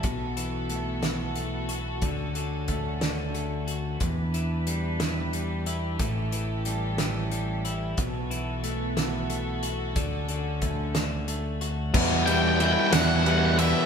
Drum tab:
CC |------|------|------|------|
RD |------|------|------|------|
HH |xxxxxx|xxxxxx|xxxxxx|xxxxxx|
SD |---o--|---o--|---o--|---o--|
BD |o-----|o-o---|o-----|o-----|

CC |------|------|x-----|
RD |------|------|-xxxxx|
HH |xxxxxx|xxxxxx|------|
SD |---o--|---o--|---o--|
BD |o-----|o-o---|o-----|